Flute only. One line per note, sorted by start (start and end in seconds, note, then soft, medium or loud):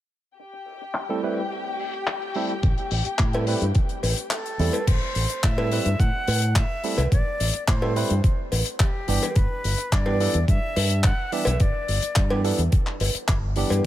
4.32 4.90 A4 medium
4.88 5.45 C5 loud
5.44 6.01 E5 loud
6.00 6.58 F#5 loud
6.56 7.11 E5 loud
7.12 7.64 D5 loud
7.68 8.49 C5 medium
8.80 9.37 G4 medium
9.36 9.94 B4 medium
9.92 10.48 D5 loud
10.48 11.06 E5 loud
11.04 11.34 F#5 loud
11.33 11.63 E5 loud
11.61 12.45 D5 loud